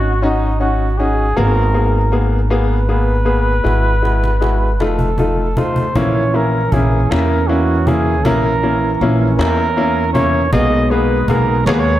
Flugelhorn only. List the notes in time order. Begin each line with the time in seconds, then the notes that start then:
Already playing: F#4
0.23 D#4
0.60 F#4
0.98 G#4
1.37 A#4
2.51 B4
4.81 A4
5.58 C5
5.97 C#5
6.35 A#4
6.72 G#4
7.10 A#4
7.47 F#4
7.87 G#4
8.24 A#4
9.38 A#4
10.13 C#5
10.53 D#5
10.91 B4
11.29 A#4
11.66 C#5
11.74 B4
11.79 C#5